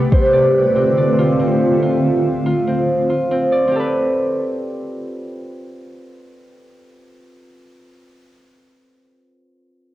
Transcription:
Already playing: C3 A3 B3 G4 B4
0.12 C5, kick
0.33 D3 A3 C4 F4 D5
0.76 C4
0.97 D5
1.19 F4
1.40 C4
1.82 F4
2.46 F4
2.67 C4
3.10 F4
3.31 C4
3.52 D5
3.68 C4
3.72 G4
3.76 A4 B4

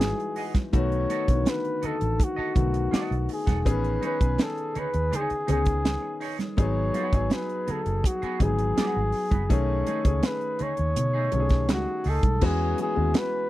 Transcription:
Already playing: G#1 E3 G#3 D#4 E4 F#4 G#4
0.00 snare, closed hi-hat, high conga
0.18 muted clean electric guitar stroke, closed hi-hat
0.36 F#4 G#4 D#5, open hi-hat
0.54 muted clean electric guitar stroke, kick, snare, closed hi-hat, high conga
0.73 B1 D#3 A3 B3 F#4, kick, closed hi-hat, muted conga
0.77 C#5
0.92 closed hi-hat
1.09 F#4 A4 D#5, closed hi-hat, muted conga
1.28 B1 D3 A3 B3 F#4, kick, closed hi-hat
1.34 D#3
1.46 B4, muted clean electric guitar stroke, snare, closed hi-hat, high conga
1.65 closed hi-hat
1.82 F#4 A4 D#5, muted fingered electric bass stroke, closed hi-hat, low conga
2.01 A1, closed hi-hat
2.19 muted clean electric guitar stroke, kick, closed hi-hat, muted conga
2.24 F#4
2.36 F#4 A4 D#5, muted fingered electric bass stroke
2.55 B1 D#3 A3 B3 F#4, muted clean electric guitar stroke, kick, closed hi-hat, low conga
2.73 muted clean electric guitar stroke, closed hi-hat
2.91 F#4 A4 D#5, muted fingered electric bass stroke, snare, closed hi-hat, high conga
3.11 B1, closed hi-hat
3.29 muted clean electric guitar stroke, open hi-hat
3.33 G#4
3.47 E1 F#4 A4 F#5, kick, snare, closed hi-hat, high conga
3.65 A1 D#3 B3 C#4 G#4 B4, kick, closed hi-hat, muted conga
3.84 closed hi-hat
4.01 D#4 G#4 C#5, closed hi-hat, muted conga
4.06 B4
4.21 B1 D#3 B3 C#4 G#5, kick, closed hi-hat
4.38 muted clean electric guitar stroke, snare, closed hi-hat, high conga
4.42 A4
4.58 closed hi-hat
4.75 D#4 G#4 C#5, muted fingered electric bass stroke, closed hi-hat, low conga
4.79 B4
4.93 D#2, muted clean electric guitar stroke, closed hi-hat
5.11 D#4 G#4 C#5, closed hi-hat, muted conga, low conga
5.16 G#4
5.30 muted clean electric guitar stroke, muted fingered electric bass stroke, closed hi-hat
5.47 C#2 D#3 B3 C#4 D#4 G#4 C#5, closed hi-hat, low conga
5.52 G#4
5.65 kick, closed hi-hat
5.85 snare, closed hi-hat, high conga
6.03 muted clean electric guitar stroke
6.20 D#4 G#4 C#5, open hi-hat
6.39 muted clean electric guitar stroke, snare, closed hi-hat, high conga
6.57 G#1 F#3 B3 D#4 G#4, kick, closed hi-hat, muted conga
6.62 C#5
6.93 B3 F#4 G#4, closed hi-hat, muted conga
7.13 G#1 F#3 B3 D#4 G#5, kick, closed hi-hat
7.30 muted clean electric guitar stroke, snare, closed hi-hat, high conga
7.34 B4
7.50 closed hi-hat
7.67 B3 F#4 G#4, muted fingered electric bass stroke, closed hi-hat, low conga
7.71 A4
7.85 F#1, muted clean electric guitar stroke, closed hi-hat
8.03 F#4, muted clean electric guitar stroke, kick, closed hi-hat, muted conga
8.22 B3 F#4 G#4, muted fingered electric bass stroke, closed hi-hat
8.40 G#1 F#3 B3 D#4 G#4, muted clean electric guitar stroke, kick, closed hi-hat, low conga
8.58 muted clean electric guitar stroke, closed hi-hat
8.77 B3 F#4 G#4, snare, closed hi-hat, high conga
8.96 G#1
9.12 muted clean electric guitar stroke, open hi-hat
9.31 F#1 B3 F#4 B4, kick, closed hi-hat, high conga
9.49 B1 D#3 A3 C#4 G#4 C#5, kick, closed hi-hat, muted conga
9.86 A3 D#4 G#4, closed hi-hat, muted conga
10.04 C#2 D#3 A3 C#4 G#4, kick, closed hi-hat
10.22 B4, muted clean electric guitar stroke, snare, closed hi-hat, high conga
10.41 closed hi-hat
10.59 A3 D#4 G#4 C#5, muted fingered electric bass stroke, closed hi-hat, low conga
10.77 D#2, closed hi-hat
10.96 B2, muted clean electric guitar stroke, closed hi-hat, muted conga, low conga
11.13 A3 D#4 G#4
11.32 B1 D#3 A3 C#4 G4, muted clean electric guitar stroke, closed hi-hat, muted conga, low conga
11.40 G#4
11.49 muted clean electric guitar stroke, kick, snare, closed hi-hat
11.69 C#2 F#4, snare, closed hi-hat, high conga
11.86 muted clean electric guitar stroke
12.04 C#2 A3 D#4 G#4, open hi-hat
12.09 A4
12.23 B1, muted clean electric guitar stroke, kick, closed hi-hat, high conga
12.41 E2 E3 G#3 B3 C#4 F#4, kick, crash, muted conga
12.46 G#4
12.78 G#4, closed hi-hat, muted conga
12.96 D#2 E3 G#3 B3 C#4 F#4
13.14 B4, snare, closed hi-hat, high conga

